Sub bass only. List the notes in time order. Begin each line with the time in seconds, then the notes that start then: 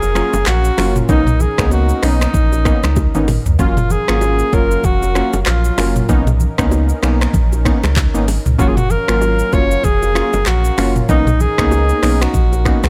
Already playing: F1
0.33 F#1
0.47 A#1
0.78 F#1
1.09 B1
1.58 C#2
2.03 B1
2.34 A#1
2.83 C#2
3.15 G#1
3.46 C#2
3.59 F#1
4.09 G#1
4.53 F#1
4.84 F1
5.33 F#1
5.47 A#1
5.78 F#1
6.09 B1
6.58 C#2
7.03 B1
7.34 A#1
7.83 C#2
8.15 G#1
8.46 C#2
8.59 F#1
9.08 G#1
9.53 F#1
9.84 F1
10.33 F#1
10.47 A#1
10.78 F#1
11.09 B1
11.58 C#2
12.03 B1
12.34 A#1
12.83 C#2